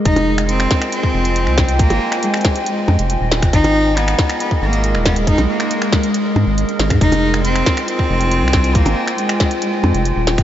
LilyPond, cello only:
\new Staff \with { instrumentName = "Cello" } { \time 4/4 \key f \minor \tempo 4 = 138 ees'4 c'4 c'2 | bes4 aes4 aes4. r8 | ees'4 ces'4 ces'8 bes4 ces'8 | ees'8 bes4. r2 |
ees'4 c'4 c'2 | bes4 aes4 aes4. r8 | }